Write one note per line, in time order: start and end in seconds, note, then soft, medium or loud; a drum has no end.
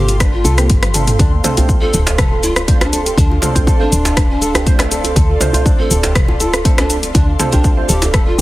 0.00 0.44 G1 medium
0.00 0.55 A#3 medium
0.00 1.16 A#3 medium
0.00 0.55 C4 medium
0.00 0.55 F4 medium
0.00 0.14 G4 loud
0.00 0.55 G4 medium
0.00 0.55 C5 medium
0.00 1.16 F5 medium
0.00 1.15 G5 medium
0.00 8.41 C6 medium
0.08 0.19 F4 medium
0.08 closed hi-hat soft
0.08 cabasa medium
0.20 0.32 D4 loud
0.20 kick loud
0.20 cross-stick loud
0.20 closed hi-hat medium
0.20 cabasa soft
0.33 0.70 F4 medium
0.44 0.69 C2 loud
0.44 0.56 A4 loud
0.44 closed hi-hat soft
0.44 cabasa medium
0.57 0.92 A#3 medium
0.57 0.92 C4 medium
0.57 0.92 F4 medium
0.57 0.69 G4 medium
0.57 0.92 G4 medium
0.57 0.92 C5 medium
0.57 cross-stick medium
0.57 closed hi-hat soft
0.57 cabasa medium
0.70 1.16 G1 medium
0.70 kick loud
0.70 closed hi-hat medium
0.70 cabasa soft
0.82 0.89 F4 medium
0.82 cross-stick medium
0.82 closed hi-hat medium
0.82 high tom medium
0.94 1.41 A3 medium
0.94 1.41 C4 medium
0.94 1.41 D4 medium
0.94 1.41 F4 medium
0.94 1.06 A4 medium
0.94 1.41 A4 medium
0.94 closed hi-hat medium
0.94 mid tom medium
0.94 cabasa medium
1.07 closed hi-hat soft
1.07 mid tom medium
1.07 cabasa medium
1.19 1.40 D2 loud
1.19 1.31 D4 loud
1.19 8.41 A4 medium
1.19 8.41 D5 medium
1.19 8.41 F5 medium
1.19 kick loud
1.19 closed hi-hat medium
1.19 cabasa soft
1.44 1.54 A3 medium
1.44 1.54 C4 medium
1.44 1.54 D4 medium
1.44 1.54 F4 medium
1.44 1.56 A4 loud
1.44 1.54 C5 loud
1.44 closed hi-hat soft
1.44 mid tom medium
1.44 djembe slap medium
1.44 cabasa medium
1.57 1.79 A3 medium
1.57 1.79 C4 medium
1.57 1.79 D4 medium
1.57 1.79 F4 medium
1.57 1.68 G4 medium
1.57 1.79 C5 loud
1.57 closed hi-hat soft
1.57 djembe tone medium
1.57 djembe bass loud
1.57 cabasa medium
1.69 kick loud
1.69 cabasa soft
1.81 2.65 A3 medium
1.81 2.65 C4 medium
1.81 2.65 D4 medium
1.81 2.65 F4 medium
1.81 1.88 F4 medium
1.81 1.99 A4 medium
1.81 2.65 C5 medium
1.93 3.14 D1 medium
1.93 2.05 A4 medium
1.93 closed hi-hat soft
1.93 djembe tone medium
1.93 cabasa medium
2.07 closed hi-hat soft
2.07 djembe slap loud
2.07 cabasa medium
2.18 2.31 A4 loud
2.18 kick loud
2.18 cross-stick loud
2.18 closed hi-hat medium
2.18 mid tom medium
2.18 cabasa soft
2.31 2.42 F4 medium
2.43 2.62 F4 medium
2.43 closed hi-hat soft
2.43 djembe tone medium
2.43 cabasa medium
2.56 2.67 F4 medium
2.56 cross-stick loud
2.56 closed hi-hat soft
2.56 cabasa medium
2.68 3.40 A3 loud
2.68 3.40 C4 medium
2.68 3.39 D4 medium
2.68 2.80 D4 loud
2.68 3.40 F4 medium
2.68 3.40 C5 loud
2.68 kick loud
2.68 closed hi-hat medium
2.68 cabasa soft
2.81 2.99 D4 medium
2.81 cross-stick medium
2.81 closed hi-hat medium
2.81 djembe slap loud
2.81 djembe tone medium
2.92 3.05 A4 loud
2.92 closed hi-hat medium
2.92 cabasa medium
3.05 3.17 G4 medium
3.05 closed hi-hat soft
3.05 cabasa medium
3.17 3.38 D2 loud
3.17 3.36 D4 medium
3.17 kick loud
3.17 closed hi-hat medium
3.17 cabasa soft
3.30 3.37 F4 medium
3.30 djembe tone medium
3.42 3.52 A3 medium
3.42 3.52 C4 medium
3.42 3.52 D4 medium
3.42 3.52 F4 medium
3.42 3.54 A4 medium
3.42 3.52 C5 loud
3.42 closed hi-hat soft
3.42 mid tom medium
3.42 djembe slap medium
3.42 cabasa medium
3.55 3.77 A3 medium
3.55 3.77 C4 medium
3.55 3.77 D4 medium
3.55 3.77 F4 medium
3.55 3.77 C5 loud
3.55 kick medium
3.55 closed hi-hat soft
3.55 djembe bass medium
3.55 cabasa medium
3.67 3.79 A4 loud
3.67 kick loud
3.67 djembe tone medium
3.67 cabasa soft
3.80 4.64 A3 medium
3.80 4.64 C4 medium
3.80 4.64 D4 medium
3.80 4.28 D4 medium
3.80 3.91 F4 medium
3.80 4.64 F4 medium
3.80 4.64 C5 medium
3.92 5.12 D1 medium
3.92 closed hi-hat soft
3.92 cabasa loud
4.04 4.15 F4 medium
4.04 closed hi-hat soft
4.04 djembe slap loud
4.04 cabasa medium
4.16 4.28 D4 loud
4.16 kick loud
4.16 cross-stick loud
4.16 closed hi-hat medium
4.16 djembe tone medium
4.16 cabasa soft
4.30 4.80 D4 loud
4.41 4.53 A4 loud
4.41 closed hi-hat soft
4.41 cabasa loud
4.55 4.66 G4 medium
4.55 cross-stick loud
4.55 closed hi-hat soft
4.55 djembe tone medium
4.55 cabasa medium
4.66 5.38 A3 loud
4.66 5.38 C4 medium
4.66 5.38 D4 medium
4.66 5.38 F4 medium
4.66 5.38 C5 loud
4.66 kick loud
4.66 closed hi-hat medium
4.66 cabasa soft
4.79 4.86 F4 medium
4.79 cross-stick loud
4.79 closed hi-hat medium
4.79 djembe slap loud
4.91 5.03 A4 medium
4.91 closed hi-hat medium
4.91 cabasa loud
5.04 closed hi-hat soft
5.04 djembe tone medium
5.04 cabasa medium
5.16 5.36 D2 loud
5.16 5.29 A4 loud
5.16 kick loud
5.16 closed hi-hat medium
5.16 cabasa soft
5.29 5.40 F4 medium
5.40 5.51 A3 medium
5.40 5.51 C4 medium
5.40 5.51 D4 medium
5.40 5.51 F4 medium
5.40 5.51 C5 loud
5.40 closed hi-hat soft
5.40 mid tom medium
5.40 djembe slap medium
5.40 djembe tone loud
5.40 cabasa loud
5.53 5.76 A3 medium
5.53 5.76 C4 medium
5.53 5.76 D4 medium
5.53 5.64 F4 medium
5.53 5.76 F4 medium
5.53 5.76 C5 loud
5.53 closed hi-hat soft
5.53 djembe bass medium
5.53 cabasa medium
5.66 5.78 D4 loud
5.66 kick loud
5.66 cabasa soft
5.79 6.62 A3 medium
5.79 6.62 C4 medium
5.79 6.62 D4 medium
5.79 6.62 F4 medium
5.79 5.97 A4 medium
5.79 6.62 C5 medium
5.91 7.11 D1 loud
5.91 6.02 A4 loud
5.91 closed hi-hat soft
5.91 djembe tone medium
5.91 cabasa loud
6.03 6.15 G4 medium
6.03 closed hi-hat soft
6.03 djembe slap loud
6.03 cabasa medium
6.15 kick loud
6.15 cross-stick loud
6.15 closed hi-hat medium
6.15 mid tom medium
6.15 cabasa soft
6.28 6.35 F4 medium
6.28 djembe tone loud
6.40 6.59 F4 medium
6.40 6.52 A4 medium
6.40 closed hi-hat soft
6.40 cabasa loud
6.54 cross-stick medium
6.54 closed hi-hat soft
6.54 cabasa medium
6.65 7.37 A3 loud
6.65 7.36 C4 medium
6.65 7.36 D4 medium
6.65 7.36 F4 medium
6.65 6.77 A4 loud
6.65 7.37 C5 loud
6.65 kick loud
6.65 closed hi-hat medium
6.65 cabasa soft
6.78 6.96 D4 medium
6.78 6.89 F4 medium
6.78 cross-stick loud
6.78 closed hi-hat medium
6.78 djembe slap loud
6.78 djembe tone medium
6.90 closed hi-hat medium
6.90 cabasa loud
7.03 7.13 F4 medium
7.03 closed hi-hat soft
7.03 cabasa medium
7.14 7.35 D2 loud
7.14 7.32 D4 medium
7.14 7.26 D4 loud
7.14 kick loud
7.14 closed hi-hat medium
7.14 djembe tone medium
7.14 cabasa soft
7.39 7.49 A3 medium
7.39 7.49 C4 medium
7.39 7.49 D4 medium
7.39 7.49 F4 medium
7.39 7.51 A4 loud
7.39 7.49 C5 loud
7.39 closed hi-hat soft
7.39 mid tom medium
7.39 djembe slap medium
7.39 cabasa loud
7.52 7.74 A3 medium
7.52 7.74 C4 medium
7.52 7.70 D4 medium
7.52 7.74 D4 medium
7.52 7.74 F4 medium
7.52 7.64 G4 medium
7.52 7.74 C5 loud
7.52 kick medium
7.52 closed hi-hat soft
7.52 djembe bass loud
7.52 cabasa medium
7.64 kick loud
7.64 djembe tone medium
7.64 cabasa soft
7.77 8.41 A3 medium
7.77 8.41 C4 medium
7.77 8.41 D4 medium
7.77 7.83 F4 medium
7.77 8.41 F4 medium
7.77 8.41 C5 medium
7.88 8.38 D1 medium
7.88 8.07 G4 loud
7.88 8.00 A4 medium
7.88 closed hi-hat soft
7.88 cabasa loud
8.02 closed hi-hat soft
8.02 djembe slap medium
8.02 djembe tone medium
8.02 cabasa medium
8.13 8.26 A4 loud
8.13 kick loud
8.13 cross-stick medium
8.13 closed hi-hat medium
8.13 cabasa soft
8.26 8.37 F4 medium
8.26 8.41 F4 medium
8.38 8.41 G4 loud